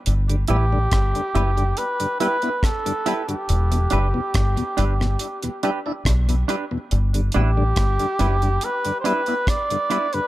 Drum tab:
HH |xxx-xxxxxxxxxxxx|xxx-xxx-xxx-xxx-|xxx-xxxxxxxxxxxx|
SD |----r-------r---|----r--r----r---|----r-------r---|
BD |----o-------o---|----o-------o---|----o-------o---|